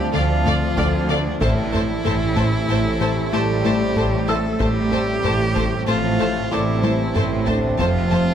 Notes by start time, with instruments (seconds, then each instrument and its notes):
Already playing: ambient pad F3 C4 D5 A5, trombone section F3 C4, french horn section G3, cello G4, felt piano C6
0.12 cello section D2, double bass section D2, analog synth bass D3, french horn section F3, viola section A3, synth arpeggio sound A3, cello F4, violin section D5 F5
0.45 analog synth bass D3, viola section A3, synth arpeggio sound A3, violin section D5 F5, taiko low-mid
0.76 cello section D2, analog synth bass D2, double bass section D2, synth arpeggio sound D3, viola section A3, violin section D5 F5, felt piano F6, taiko
1.08 analog synth bass D3, french horn section D3, viola section A3, synth arpeggio sound A3, cello D4, violin section D5 F5
1.40 double bass section A1, cello section A2, analog synth bass A2, trombone section C3 A3, french horn section E3, viola section A3, synth arpeggio sound A3, ambient pad A3 A4 C5, cello E4, violin section C5 A5, taiko
1.72 viola section A3, analog synth bass A3, violin section C5 A5, taiko low-mid
2.05 double bass section A1, cello section A2, analog synth bass A2, viola section A3, synth arpeggio sound A4, violin section C5 A5, taiko low-mid
2.36 analog synth bass A2, viola section A3, synth arpeggio sound A3, violin section C5 A5, taiko
2.69 double bass section A1, cello section A2, analog synth bass A2, viola section A3, violin section C5 A5
3.01 analog synth bass A2, viola section A3, synth arpeggio sound A3, violin section C5 A5
3.32 double bass section A1, cello section A2, french horn section G3, viola section A3, analog synth bass A3, synth arpeggio sound E4, cello G4, violin section C5 A5
3.63 viola section A3, analog synth bass A3, synth arpeggio sound E4, violin section C5 A5, taiko low-mid
3.96 double bass section A1, cello section A2, analog synth bass A2, viola section A3, synth arpeggio sound A3, violin section C5 A5, taiko
4.28 viola section A3, french horn section A3, analog synth bass A3, synth arpeggio sound E4, cello A4, violin section C5 A5, felt piano E5 E6
4.59 double bass section A1, analog synth bass A2, cello section A2, trombone section C3 C4, french horn section G3, viola section A3, ambient pad A3 C4 C5 A5, synth arpeggio sound A3, cello G4, violin section C5 A5, taiko
4.91 viola section A3, analog synth bass A3, violin section C5 A5, taiko low-mid
5.23 double bass section A1, analog synth bass A2, cello section A2, viola section A3, synth arpeggio sound A4, violin section C5 A5, taiko low-mid
5.55 analog synth bass A2, viola section A3, synth arpeggio sound A3, violin section C5 A5, taiko
5.87 double bass section A1, cello section A2, analog synth bass A2, french horn section F3, viola section A3, cello F4, violin section C5 A5
6.20 analog synth bass A2, viola section A3, synth arpeggio sound A3, violin section C5 A5
6.52 double bass section A1, cello section A2, french horn section E3, analog synth bass A3, viola section A3, synth arpeggio sound E4, cello E4, violin section C5 A5, felt piano D5 D6
6.83 analog synth bass A3, viola section A3, synth arpeggio sound E4, violin section C5 A5, taiko high
7.15 double bass section A1, analog synth bass A2, cello section A2, synth arpeggio sound A3, viola section A3, violin section C5 A5, taiko low-mid
7.46 french horn section D3, analog synth bass A3, viola section A3, cello D4, synth arpeggio sound E4, violin section C5 A5, taiko low
7.78 double bass section F1, analog synth bass F2, cello section F2, french horn section F3, synth arpeggio sound F3, viola section A3, cello F4, violin section C5 A5, taiko
8.10 analog synth bass F3, viola section A3, violin section C5 A5, taiko low-mid